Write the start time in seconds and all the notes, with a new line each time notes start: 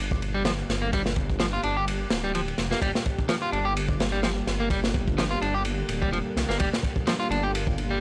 Already playing: G1 D3 G3 A#3 G4
0.11 kick
0.22 ride
0.34 G3
0.45 F3, snare, ride
0.69 G1, snare, ride
0.82 A#3
0.93 G3, kick, ride
1.06 snare
1.16 kick, ride
1.30 kick
1.40 F3, snare, ride
1.53 F4
1.63 G1 D4, ride
1.77 G4
1.88 ride
2.10 D1, snare, ride
2.24 G3
2.35 F3, ride
2.48 ride
2.58 F1, snare, ride
2.71 A#3, snare
2.82 G1 G3, kick, ride
2.95 snare
3.06 kick, ride
3.19 kick
3.29 F3, snare, ride
3.42 F4
3.52 G1 D4, ride
3.65 G4
3.77 ride
3.89 kick
4.00 snare, ride
4.12 G3
4.23 F3, snare, ride
4.47 G1, snare, ride
4.60 A#3
4.70 G3, kick, ride
4.84 snare
4.94 kick, ride
5.08 kick
5.18 F3, snare, ride
5.31 F4
5.42 G1 D4, ride
5.54 G4
5.65 ride
5.89 D1, ride
6.02 G3, kick
6.12 F1 F3, ride
6.36 C2, snare, ride
6.49 G1 A#3, snare
6.60 G1 G3 F4, kick, ride
6.73 snare
6.83 kick, ride
6.96 kick
7.07 F3, snare, ride
7.20 F4
7.30 G1 D4, ride
7.43 G4
7.55 ride
7.67 kick
7.78 ride
7.91 G3